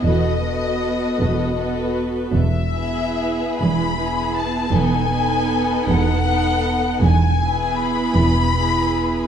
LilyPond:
<<
  \new Staff \with { instrumentName = "Violin section" } { \time 6/8 \key e \major \tempo 4. = 52 dis''2~ dis''8 r8 | e''4. b''4 a''8 | gis''4. fis''4. | gis''4 b''2 | }
  \new Staff \with { instrumentName = "Violin section" } { \time 6/8 \key e \major <a' b'>8 <a' b'>4. <a' b'>4 | r8 <gis' b'>4. <gis' b'>4 | <a' b'>8 <a' b'>4. <a' b'>4 | r8 <gis' b'>4. <gis' b'>4 | }
  \new Staff \with { instrumentName = "Viola section" } { \time 6/8 \key e \major <b fis'>8 <b fis'>4. <b fis'>4 | r8 <b e'>4. <b e'>4 | <b dis'>8 <b dis'>4. <b dis'>4 | r8 <b e'>4. <b e'>4 | }
  \new Staff \with { instrumentName = "Cello section" } { \clef bass \time 6/8 \key e \major e,4. e,4. | e,4. e,4. | e,4. e,4. | e,4. e,4. | }
  \new Staff \with { instrumentName = "Double bass section" } { \clef bass \time 6/8 \key e \major e,,4. e,,4. | e,,4. e,,4. | e,,4. e,,4. | e,,4. e,,4. | }
>>